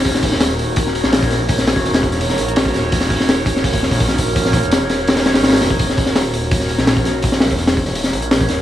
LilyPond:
<<
  \new Staff \with { instrumentName = "Ambient pad" } { \time 4/4 \key ees \phrygian \tempo 4 = 167 r4. <ees' ges' bes' des''>2~ <ees' ges' bes' des''>8 | r1 | r4. <ees' ges' bes' des''>2~ <ees' ges' bes' des''>8 | r1 |
r4. <ees' ges' bes' des''>2~ <ees' ges' bes' des''>8 | r1 | }
  \new Staff \with { instrumentName = "Detuned saw bass" } { \clef bass \time 4/4 \key ees \phrygian ees,,2~ ees,,8. bes,,4~ bes,,16~ | bes,,8. fes,,4.~ fes,,16 bes,,4 ees,,8 | ees,,2~ ees,,8. bes,,4~ bes,,16~ | bes,,8. fes,,2 aes,,8. fes,,8 |
ees,,2~ ees,,8. bes,,4~ bes,,16~ | bes,,8. fes,,4.~ fes,,16 bes,,4 ees,,8 | }
  \new DrumStaff \with { instrumentName = "Drums" } \drummode { \time 4/4 <hho bd>16 sn16 <hho bd>16 sn16 <hho sn>8 hho8 <hho bd>16 sn16 hho16 sn16 <hho sn>16 bd16 <hho sn>8 | <hho bd>16 sn16 <hho sn>16 bd16 <hho sn>16 <hho sn>16 bd16 <hho sn>16 hho16 sn16 hho16 hh16 <hho sn>16 bd16 <hho sn>8 | <hho bd>16 sn16 <hho bd>16 sn16 <hho sn>8 <hho bd>16 sn16 <hho bd>16 <hho bd>16 sn16 <hho bd>16 <hho bd>16 sn16 <hho bd>8 | <hho bd>16 sn16 <hho bd>16 hh16 <hho sn>8 <hho sn>8 <hho sn>16 <hho sn>16 <hho sn>16 <hho sn>16 <hho sn>32 <hho sn>32 <hho sn>16 <hho sn>16 bd16 |
<hho bd>16 sn16 <hho bd>16 sn16 <hho sn>8 hho8 <hho bd>16 sn16 hho16 sn16 <hho sn>16 bd16 <hho sn>8 | <hho bd>16 sn16 <hho sn>16 bd16 <hho sn>16 <hho sn>16 bd16 <hho sn>16 hho16 sn16 hho16 hh16 <hho sn>16 bd16 <hho sn>8 | }
>>